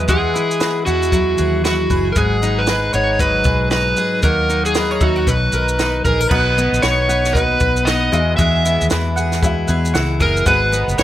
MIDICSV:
0, 0, Header, 1, 7, 480
1, 0, Start_track
1, 0, Key_signature, 5, "major"
1, 0, Tempo, 519031
1, 79, Time_signature, 4, 2, 24, 8
1, 10202, End_track
2, 0, Start_track
2, 0, Title_t, "Electric slide guitar"
2, 0, Program_c, 0, 29
2, 0, Note_on_c, 0, 71, 79
2, 84, Note_on_c, 0, 68, 76
2, 103, Note_off_c, 0, 71, 0
2, 789, Note_off_c, 0, 68, 0
2, 792, Note_on_c, 0, 66, 83
2, 1514, Note_off_c, 0, 66, 0
2, 1525, Note_on_c, 0, 66, 68
2, 1919, Note_off_c, 0, 66, 0
2, 1964, Note_on_c, 0, 70, 52
2, 2007, Note_off_c, 0, 70, 0
2, 2008, Note_on_c, 0, 68, 73
2, 2392, Note_on_c, 0, 71, 87
2, 2398, Note_off_c, 0, 68, 0
2, 2722, Note_off_c, 0, 71, 0
2, 2726, Note_on_c, 0, 73, 81
2, 2945, Note_off_c, 0, 73, 0
2, 2962, Note_on_c, 0, 71, 79
2, 3426, Note_off_c, 0, 71, 0
2, 3437, Note_on_c, 0, 71, 75
2, 3883, Note_off_c, 0, 71, 0
2, 3917, Note_on_c, 0, 70, 84
2, 4304, Note_off_c, 0, 70, 0
2, 4308, Note_on_c, 0, 68, 72
2, 4650, Note_off_c, 0, 68, 0
2, 4650, Note_on_c, 0, 66, 69
2, 4884, Note_on_c, 0, 71, 74
2, 4890, Note_off_c, 0, 66, 0
2, 5563, Note_off_c, 0, 71, 0
2, 5598, Note_on_c, 0, 70, 64
2, 5821, Note_off_c, 0, 70, 0
2, 5825, Note_on_c, 0, 71, 77
2, 6310, Note_on_c, 0, 73, 79
2, 6325, Note_off_c, 0, 71, 0
2, 6780, Note_on_c, 0, 71, 83
2, 6807, Note_off_c, 0, 73, 0
2, 7262, Note_on_c, 0, 75, 79
2, 7282, Note_off_c, 0, 71, 0
2, 7734, Note_off_c, 0, 75, 0
2, 7737, Note_on_c, 0, 76, 90
2, 8192, Note_off_c, 0, 76, 0
2, 9451, Note_on_c, 0, 70, 68
2, 9687, Note_off_c, 0, 70, 0
2, 9690, Note_on_c, 0, 71, 76
2, 10131, Note_off_c, 0, 71, 0
2, 10169, Note_on_c, 0, 73, 83
2, 10202, Note_off_c, 0, 73, 0
2, 10202, End_track
3, 0, Start_track
3, 0, Title_t, "Mandolin"
3, 0, Program_c, 1, 25
3, 0, Note_on_c, 1, 71, 46
3, 77, Note_on_c, 1, 56, 70
3, 82, Note_on_c, 1, 78, 59
3, 313, Note_on_c, 1, 64, 51
3, 551, Note_off_c, 1, 71, 0
3, 554, Note_on_c, 1, 71, 54
3, 792, Note_off_c, 1, 78, 0
3, 795, Note_on_c, 1, 78, 52
3, 1025, Note_off_c, 1, 64, 0
3, 1036, Note_on_c, 1, 64, 56
3, 1278, Note_off_c, 1, 71, 0
3, 1282, Note_on_c, 1, 71, 50
3, 1510, Note_off_c, 1, 64, 0
3, 1521, Note_on_c, 1, 64, 56
3, 1757, Note_off_c, 1, 71, 0
3, 1761, Note_on_c, 1, 71, 52
3, 1997, Note_off_c, 1, 56, 0
3, 2001, Note_on_c, 1, 56, 68
3, 2004, Note_off_c, 1, 78, 0
3, 2008, Note_on_c, 1, 78, 56
3, 2057, Note_off_c, 1, 64, 0
3, 2244, Note_on_c, 1, 63, 52
3, 2472, Note_off_c, 1, 71, 0
3, 2476, Note_on_c, 1, 71, 53
3, 2710, Note_off_c, 1, 78, 0
3, 2713, Note_on_c, 1, 78, 53
3, 2952, Note_off_c, 1, 63, 0
3, 2956, Note_on_c, 1, 63, 58
3, 3187, Note_off_c, 1, 71, 0
3, 3198, Note_on_c, 1, 71, 46
3, 3434, Note_off_c, 1, 63, 0
3, 3438, Note_on_c, 1, 63, 52
3, 3662, Note_off_c, 1, 71, 0
3, 3673, Note_on_c, 1, 71, 60
3, 3913, Note_off_c, 1, 56, 0
3, 3917, Note_on_c, 1, 58, 67
3, 3918, Note_off_c, 1, 78, 0
3, 3922, Note_on_c, 1, 78, 61
3, 3972, Note_off_c, 1, 71, 0
3, 4157, Note_off_c, 1, 63, 0
3, 4160, Note_on_c, 1, 63, 52
3, 4399, Note_on_c, 1, 71, 55
3, 4540, Note_off_c, 1, 71, 0
3, 4540, Note_on_c, 1, 73, 41
3, 4628, Note_off_c, 1, 78, 0
3, 4632, Note_on_c, 1, 76, 55
3, 4771, Note_off_c, 1, 76, 0
3, 4771, Note_on_c, 1, 78, 49
3, 4876, Note_off_c, 1, 58, 0
3, 4929, Note_off_c, 1, 78, 0
3, 4933, Note_off_c, 1, 73, 0
3, 5116, Note_on_c, 1, 70, 45
3, 5347, Note_off_c, 1, 63, 0
3, 5350, Note_on_c, 1, 63, 52
3, 5579, Note_off_c, 1, 70, 0
3, 5590, Note_on_c, 1, 70, 50
3, 5835, Note_on_c, 1, 59, 76
3, 5843, Note_on_c, 1, 78, 59
3, 5890, Note_off_c, 1, 63, 0
3, 5891, Note_off_c, 1, 70, 0
3, 6074, Note_on_c, 1, 63, 52
3, 6315, Note_on_c, 1, 71, 53
3, 6550, Note_off_c, 1, 78, 0
3, 6554, Note_on_c, 1, 78, 56
3, 6778, Note_off_c, 1, 63, 0
3, 6789, Note_on_c, 1, 63, 57
3, 7029, Note_off_c, 1, 71, 0
3, 7033, Note_on_c, 1, 71, 51
3, 7270, Note_off_c, 1, 78, 0
3, 7274, Note_on_c, 1, 78, 63
3, 7506, Note_off_c, 1, 59, 0
3, 7510, Note_on_c, 1, 56, 79
3, 7570, Note_off_c, 1, 63, 0
3, 7746, Note_off_c, 1, 56, 0
3, 7750, Note_on_c, 1, 56, 77
3, 7751, Note_off_c, 1, 78, 0
3, 7755, Note_on_c, 1, 78, 60
3, 7997, Note_on_c, 1, 64, 52
3, 8234, Note_off_c, 1, 71, 0
3, 8237, Note_on_c, 1, 71, 56
3, 8467, Note_off_c, 1, 78, 0
3, 8471, Note_on_c, 1, 78, 62
3, 8703, Note_off_c, 1, 64, 0
3, 8714, Note_on_c, 1, 64, 62
3, 8946, Note_off_c, 1, 71, 0
3, 8950, Note_on_c, 1, 71, 54
3, 9186, Note_off_c, 1, 78, 0
3, 9190, Note_on_c, 1, 78, 66
3, 9426, Note_off_c, 1, 71, 0
3, 9430, Note_on_c, 1, 71, 58
3, 9668, Note_off_c, 1, 56, 0
3, 9671, Note_on_c, 1, 59, 77
3, 9672, Note_off_c, 1, 78, 0
3, 9676, Note_on_c, 1, 78, 62
3, 9733, Note_off_c, 1, 64, 0
3, 9910, Note_on_c, 1, 63, 53
3, 10147, Note_off_c, 1, 71, 0
3, 10151, Note_on_c, 1, 71, 60
3, 10202, Note_off_c, 1, 59, 0
3, 10202, Note_off_c, 1, 63, 0
3, 10202, Note_off_c, 1, 71, 0
3, 10202, Note_off_c, 1, 78, 0
3, 10202, End_track
4, 0, Start_track
4, 0, Title_t, "Felt piano"
4, 0, Program_c, 2, 0
4, 5824, Note_on_c, 2, 59, 72
4, 5831, Note_on_c, 2, 66, 60
4, 5848, Note_on_c, 2, 75, 75
4, 5984, Control_c, 2, 64, 127
4, 6641, Note_off_c, 2, 59, 0
4, 6644, Note_off_c, 2, 66, 0
4, 6652, Note_off_c, 2, 75, 0
4, 6783, Note_on_c, 2, 59, 63
4, 6795, Note_on_c, 2, 66, 62
4, 6803, Note_on_c, 2, 75, 69
4, 7492, Note_off_c, 2, 66, 0
4, 7501, Note_on_c, 2, 56, 66
4, 7505, Note_on_c, 2, 66, 64
4, 7509, Note_off_c, 2, 59, 0
4, 7516, Note_on_c, 2, 76, 76
4, 7520, Note_off_c, 2, 75, 0
4, 7528, Control_c, 2, 64, 0
4, 7683, Control_c, 2, 64, 127
4, 8319, Note_off_c, 2, 56, 0
4, 8322, Note_off_c, 2, 66, 0
4, 8327, Note_off_c, 2, 76, 0
4, 8711, Note_on_c, 2, 56, 83
4, 8725, Note_on_c, 2, 66, 73
4, 8732, Note_on_c, 2, 76, 82
4, 9525, Note_off_c, 2, 56, 0
4, 9532, Note_off_c, 2, 66, 0
4, 9535, Note_off_c, 2, 76, 0
4, 9674, Note_on_c, 2, 56, 71
4, 9681, Note_on_c, 2, 66, 68
4, 9688, Control_c, 2, 64, 0
4, 9691, Note_on_c, 2, 71, 74
4, 9854, Control_c, 2, 64, 127
4, 10202, Note_off_c, 2, 56, 0
4, 10202, Note_off_c, 2, 66, 0
4, 10202, Note_off_c, 2, 71, 0
4, 10202, End_track
5, 0, Start_track
5, 0, Title_t, "Steel-string acoustic guitar"
5, 0, Program_c, 3, 25
5, 0, Note_on_c, 3, 54, 58
5, 0, Note_on_c, 3, 71, 54
5, 90, Note_on_c, 3, 52, 72
5, 118, Note_off_c, 3, 54, 0
5, 330, Note_on_c, 3, 64, 51
5, 555, Note_off_c, 3, 71, 0
5, 559, Note_on_c, 3, 68, 55
5, 788, Note_off_c, 3, 64, 0
5, 799, Note_on_c, 3, 64, 50
5, 1043, Note_on_c, 3, 54, 60
5, 1273, Note_off_c, 3, 68, 0
5, 1276, Note_on_c, 3, 68, 58
5, 1514, Note_off_c, 3, 64, 0
5, 1525, Note_on_c, 3, 64, 54
5, 1759, Note_off_c, 3, 68, 0
5, 1763, Note_on_c, 3, 68, 64
5, 2003, Note_off_c, 3, 52, 0
5, 2004, Note_on_c, 3, 44, 76
5, 2058, Note_off_c, 3, 64, 0
5, 2246, Note_on_c, 3, 63, 58
5, 2483, Note_off_c, 3, 68, 0
5, 2487, Note_on_c, 3, 68, 55
5, 2514, Note_off_c, 3, 54, 0
5, 2725, Note_off_c, 3, 63, 0
5, 2729, Note_on_c, 3, 63, 48
5, 2962, Note_on_c, 3, 54, 61
5, 3186, Note_off_c, 3, 68, 0
5, 3197, Note_on_c, 3, 68, 56
5, 3437, Note_off_c, 3, 63, 0
5, 3440, Note_on_c, 3, 63, 50
5, 3669, Note_off_c, 3, 68, 0
5, 3680, Note_on_c, 3, 68, 57
5, 3919, Note_off_c, 3, 44, 0
5, 3920, Note_on_c, 3, 51, 75
5, 3976, Note_off_c, 3, 68, 0
5, 4153, Note_off_c, 3, 63, 0
5, 4157, Note_on_c, 3, 63, 51
5, 4398, Note_on_c, 3, 70, 54
5, 4631, Note_off_c, 3, 63, 0
5, 4635, Note_on_c, 3, 63, 50
5, 4876, Note_on_c, 3, 47, 68
5, 4934, Note_off_c, 3, 70, 0
5, 5126, Note_on_c, 3, 70, 52
5, 5355, Note_off_c, 3, 63, 0
5, 5359, Note_on_c, 3, 63, 52
5, 5598, Note_off_c, 3, 70, 0
5, 5602, Note_on_c, 3, 68, 60
5, 5630, Note_off_c, 3, 54, 0
5, 5738, Note_off_c, 3, 68, 0
5, 5738, Note_on_c, 3, 70, 41
5, 5824, Note_off_c, 3, 47, 0
5, 5835, Note_on_c, 3, 47, 71
5, 5836, Note_off_c, 3, 70, 0
5, 5840, Note_on_c, 3, 71, 59
5, 5895, Note_off_c, 3, 63, 0
5, 6084, Note_on_c, 3, 59, 54
5, 6323, Note_on_c, 3, 63, 54
5, 6555, Note_off_c, 3, 71, 0
5, 6558, Note_on_c, 3, 71, 58
5, 6790, Note_off_c, 3, 63, 0
5, 6801, Note_on_c, 3, 63, 51
5, 7034, Note_off_c, 3, 71, 0
5, 7038, Note_on_c, 3, 71, 58
5, 7157, Note_off_c, 3, 51, 0
5, 7270, Note_off_c, 3, 63, 0
5, 7281, Note_on_c, 3, 63, 55
5, 7522, Note_on_c, 3, 52, 79
5, 7573, Note_off_c, 3, 47, 0
5, 7576, Note_off_c, 3, 63, 0
5, 7748, Note_off_c, 3, 52, 0
5, 7758, Note_on_c, 3, 52, 72
5, 7761, Note_off_c, 3, 71, 0
5, 7765, Note_on_c, 3, 68, 55
5, 8000, Note_off_c, 3, 59, 0
5, 8004, Note_on_c, 3, 59, 55
5, 8244, Note_on_c, 3, 64, 51
5, 8482, Note_off_c, 3, 68, 0
5, 8486, Note_on_c, 3, 68, 58
5, 8715, Note_off_c, 3, 64, 0
5, 8726, Note_on_c, 3, 64, 52
5, 8964, Note_off_c, 3, 68, 0
5, 8968, Note_on_c, 3, 68, 59
5, 9189, Note_off_c, 3, 64, 0
5, 9200, Note_on_c, 3, 64, 52
5, 9435, Note_off_c, 3, 68, 0
5, 9439, Note_on_c, 3, 68, 64
5, 9678, Note_off_c, 3, 52, 0
5, 9683, Note_on_c, 3, 44, 77
5, 9685, Note_off_c, 3, 68, 0
5, 9689, Note_on_c, 3, 68, 69
5, 9736, Note_off_c, 3, 64, 0
5, 9913, Note_off_c, 3, 59, 0
5, 9917, Note_on_c, 3, 59, 61
5, 10158, Note_on_c, 3, 63, 55
5, 10202, Note_off_c, 3, 44, 0
5, 10202, Note_off_c, 3, 59, 0
5, 10202, Note_off_c, 3, 63, 0
5, 10202, Note_off_c, 3, 68, 0
5, 10202, End_track
6, 0, Start_track
6, 0, Title_t, "Fingered electric bass"
6, 0, Program_c, 4, 33
6, 0, Note_on_c, 4, 40, 75
6, 282, Note_off_c, 4, 40, 0
6, 806, Note_on_c, 4, 40, 91
6, 1245, Note_off_c, 4, 40, 0
6, 1288, Note_on_c, 4, 39, 81
6, 1726, Note_off_c, 4, 39, 0
6, 1757, Note_on_c, 4, 30, 74
6, 1978, Note_off_c, 4, 30, 0
6, 2002, Note_on_c, 4, 32, 90
6, 2683, Note_off_c, 4, 32, 0
6, 2717, Note_on_c, 4, 32, 82
6, 3159, Note_off_c, 4, 32, 0
6, 3193, Note_on_c, 4, 35, 77
6, 3638, Note_off_c, 4, 35, 0
6, 3916, Note_on_c, 4, 39, 85
6, 4600, Note_off_c, 4, 39, 0
6, 4637, Note_on_c, 4, 39, 84
6, 4857, Note_off_c, 4, 39, 0
6, 4876, Note_on_c, 4, 35, 70
6, 5096, Note_off_c, 4, 35, 0
6, 5112, Note_on_c, 4, 35, 79
6, 5557, Note_off_c, 4, 35, 0
6, 5600, Note_on_c, 4, 34, 74
6, 5819, Note_off_c, 4, 34, 0
6, 5835, Note_on_c, 4, 35, 99
6, 6189, Note_off_c, 4, 35, 0
6, 6219, Note_on_c, 4, 34, 78
6, 6307, Note_off_c, 4, 34, 0
6, 6320, Note_on_c, 4, 35, 84
6, 7002, Note_off_c, 4, 35, 0
6, 7038, Note_on_c, 4, 35, 88
6, 7480, Note_off_c, 4, 35, 0
6, 7516, Note_on_c, 4, 40, 85
6, 7737, Note_off_c, 4, 40, 0
6, 7758, Note_on_c, 4, 40, 93
6, 8110, Note_off_c, 4, 40, 0
6, 8153, Note_on_c, 4, 39, 79
6, 8235, Note_off_c, 4, 39, 0
6, 8249, Note_on_c, 4, 40, 92
6, 8927, Note_off_c, 4, 40, 0
6, 8961, Note_on_c, 4, 40, 102
6, 9180, Note_off_c, 4, 40, 0
6, 9199, Note_on_c, 4, 37, 70
6, 9419, Note_off_c, 4, 37, 0
6, 9439, Note_on_c, 4, 30, 86
6, 9659, Note_off_c, 4, 30, 0
6, 9679, Note_on_c, 4, 32, 98
6, 10032, Note_off_c, 4, 32, 0
6, 10059, Note_on_c, 4, 30, 79
6, 10148, Note_off_c, 4, 30, 0
6, 10159, Note_on_c, 4, 32, 96
6, 10202, Note_off_c, 4, 32, 0
6, 10202, End_track
7, 0, Start_track
7, 0, Title_t, "Drums"
7, 77, Note_on_c, 9, 82, 56
7, 80, Note_on_c, 9, 36, 96
7, 169, Note_off_c, 9, 82, 0
7, 172, Note_off_c, 9, 36, 0
7, 330, Note_on_c, 9, 82, 47
7, 423, Note_off_c, 9, 82, 0
7, 471, Note_on_c, 9, 82, 41
7, 560, Note_off_c, 9, 82, 0
7, 560, Note_on_c, 9, 82, 68
7, 565, Note_on_c, 9, 38, 103
7, 653, Note_off_c, 9, 82, 0
7, 658, Note_off_c, 9, 38, 0
7, 803, Note_on_c, 9, 82, 46
7, 896, Note_off_c, 9, 82, 0
7, 948, Note_on_c, 9, 82, 44
7, 1038, Note_on_c, 9, 36, 71
7, 1040, Note_off_c, 9, 82, 0
7, 1044, Note_on_c, 9, 82, 66
7, 1130, Note_off_c, 9, 36, 0
7, 1136, Note_off_c, 9, 82, 0
7, 1275, Note_on_c, 9, 82, 40
7, 1368, Note_off_c, 9, 82, 0
7, 1527, Note_on_c, 9, 82, 61
7, 1529, Note_on_c, 9, 38, 85
7, 1619, Note_off_c, 9, 82, 0
7, 1622, Note_off_c, 9, 38, 0
7, 1759, Note_on_c, 9, 36, 76
7, 1759, Note_on_c, 9, 82, 43
7, 1851, Note_off_c, 9, 36, 0
7, 1852, Note_off_c, 9, 82, 0
7, 1997, Note_on_c, 9, 82, 57
7, 1999, Note_on_c, 9, 36, 100
7, 2089, Note_off_c, 9, 82, 0
7, 2091, Note_off_c, 9, 36, 0
7, 2244, Note_on_c, 9, 82, 47
7, 2337, Note_off_c, 9, 82, 0
7, 2468, Note_on_c, 9, 82, 63
7, 2473, Note_on_c, 9, 38, 99
7, 2560, Note_off_c, 9, 82, 0
7, 2565, Note_off_c, 9, 38, 0
7, 2712, Note_on_c, 9, 82, 45
7, 2805, Note_off_c, 9, 82, 0
7, 2954, Note_on_c, 9, 36, 73
7, 2956, Note_on_c, 9, 82, 61
7, 3047, Note_off_c, 9, 36, 0
7, 3049, Note_off_c, 9, 82, 0
7, 3182, Note_on_c, 9, 82, 45
7, 3193, Note_on_c, 9, 36, 81
7, 3274, Note_off_c, 9, 82, 0
7, 3286, Note_off_c, 9, 36, 0
7, 3431, Note_on_c, 9, 82, 61
7, 3433, Note_on_c, 9, 38, 95
7, 3523, Note_off_c, 9, 82, 0
7, 3526, Note_off_c, 9, 38, 0
7, 3667, Note_on_c, 9, 82, 43
7, 3759, Note_off_c, 9, 82, 0
7, 3908, Note_on_c, 9, 82, 59
7, 3914, Note_on_c, 9, 36, 96
7, 4001, Note_off_c, 9, 82, 0
7, 4006, Note_off_c, 9, 36, 0
7, 4159, Note_on_c, 9, 82, 46
7, 4252, Note_off_c, 9, 82, 0
7, 4305, Note_on_c, 9, 82, 40
7, 4391, Note_off_c, 9, 82, 0
7, 4391, Note_on_c, 9, 82, 65
7, 4396, Note_on_c, 9, 38, 99
7, 4484, Note_off_c, 9, 82, 0
7, 4489, Note_off_c, 9, 38, 0
7, 4632, Note_on_c, 9, 82, 51
7, 4633, Note_on_c, 9, 36, 85
7, 4724, Note_off_c, 9, 82, 0
7, 4725, Note_off_c, 9, 36, 0
7, 4873, Note_on_c, 9, 36, 65
7, 4880, Note_on_c, 9, 82, 66
7, 4966, Note_off_c, 9, 36, 0
7, 4972, Note_off_c, 9, 82, 0
7, 5108, Note_on_c, 9, 82, 43
7, 5200, Note_off_c, 9, 82, 0
7, 5257, Note_on_c, 9, 82, 46
7, 5350, Note_off_c, 9, 82, 0
7, 5357, Note_on_c, 9, 82, 59
7, 5360, Note_on_c, 9, 38, 94
7, 5450, Note_off_c, 9, 82, 0
7, 5452, Note_off_c, 9, 38, 0
7, 5595, Note_on_c, 9, 36, 74
7, 5596, Note_on_c, 9, 82, 39
7, 5687, Note_off_c, 9, 36, 0
7, 5688, Note_off_c, 9, 82, 0
7, 5749, Note_on_c, 9, 82, 40
7, 5834, Note_on_c, 9, 36, 93
7, 5835, Note_on_c, 9, 49, 85
7, 5842, Note_off_c, 9, 82, 0
7, 5927, Note_off_c, 9, 36, 0
7, 5928, Note_off_c, 9, 49, 0
7, 6088, Note_on_c, 9, 82, 50
7, 6181, Note_off_c, 9, 82, 0
7, 6232, Note_on_c, 9, 82, 37
7, 6314, Note_off_c, 9, 82, 0
7, 6314, Note_on_c, 9, 82, 67
7, 6319, Note_on_c, 9, 38, 105
7, 6407, Note_off_c, 9, 82, 0
7, 6412, Note_off_c, 9, 38, 0
7, 6563, Note_on_c, 9, 82, 47
7, 6655, Note_off_c, 9, 82, 0
7, 6703, Note_on_c, 9, 38, 33
7, 6708, Note_on_c, 9, 82, 50
7, 6795, Note_off_c, 9, 38, 0
7, 6797, Note_on_c, 9, 36, 73
7, 6800, Note_off_c, 9, 82, 0
7, 6808, Note_on_c, 9, 82, 58
7, 6889, Note_off_c, 9, 36, 0
7, 6900, Note_off_c, 9, 82, 0
7, 7030, Note_on_c, 9, 82, 48
7, 7036, Note_on_c, 9, 36, 87
7, 7123, Note_off_c, 9, 82, 0
7, 7128, Note_off_c, 9, 36, 0
7, 7180, Note_on_c, 9, 82, 45
7, 7273, Note_off_c, 9, 82, 0
7, 7280, Note_on_c, 9, 82, 69
7, 7282, Note_on_c, 9, 38, 93
7, 7372, Note_off_c, 9, 82, 0
7, 7375, Note_off_c, 9, 38, 0
7, 7517, Note_on_c, 9, 82, 44
7, 7610, Note_off_c, 9, 82, 0
7, 7757, Note_on_c, 9, 36, 108
7, 7757, Note_on_c, 9, 82, 63
7, 7849, Note_off_c, 9, 82, 0
7, 7850, Note_off_c, 9, 36, 0
7, 8004, Note_on_c, 9, 82, 53
7, 8097, Note_off_c, 9, 82, 0
7, 8149, Note_on_c, 9, 82, 38
7, 8234, Note_off_c, 9, 82, 0
7, 8234, Note_on_c, 9, 82, 69
7, 8239, Note_on_c, 9, 38, 116
7, 8326, Note_off_c, 9, 82, 0
7, 8331, Note_off_c, 9, 38, 0
7, 8482, Note_on_c, 9, 82, 51
7, 8574, Note_off_c, 9, 82, 0
7, 8617, Note_on_c, 9, 38, 33
7, 8623, Note_on_c, 9, 82, 48
7, 8710, Note_off_c, 9, 38, 0
7, 8715, Note_off_c, 9, 82, 0
7, 8717, Note_on_c, 9, 36, 81
7, 8725, Note_on_c, 9, 82, 67
7, 8810, Note_off_c, 9, 36, 0
7, 8818, Note_off_c, 9, 82, 0
7, 8950, Note_on_c, 9, 82, 49
7, 9043, Note_off_c, 9, 82, 0
7, 9111, Note_on_c, 9, 82, 47
7, 9203, Note_off_c, 9, 82, 0
7, 9203, Note_on_c, 9, 82, 64
7, 9205, Note_on_c, 9, 38, 102
7, 9295, Note_off_c, 9, 82, 0
7, 9298, Note_off_c, 9, 38, 0
7, 9437, Note_on_c, 9, 36, 83
7, 9437, Note_on_c, 9, 82, 47
7, 9529, Note_off_c, 9, 82, 0
7, 9530, Note_off_c, 9, 36, 0
7, 9587, Note_on_c, 9, 82, 45
7, 9675, Note_off_c, 9, 82, 0
7, 9675, Note_on_c, 9, 82, 65
7, 9676, Note_on_c, 9, 36, 100
7, 9768, Note_off_c, 9, 36, 0
7, 9768, Note_off_c, 9, 82, 0
7, 9925, Note_on_c, 9, 82, 54
7, 10018, Note_off_c, 9, 82, 0
7, 10070, Note_on_c, 9, 82, 45
7, 10160, Note_off_c, 9, 82, 0
7, 10160, Note_on_c, 9, 82, 70
7, 10165, Note_on_c, 9, 38, 119
7, 10202, Note_off_c, 9, 38, 0
7, 10202, Note_off_c, 9, 82, 0
7, 10202, End_track
0, 0, End_of_file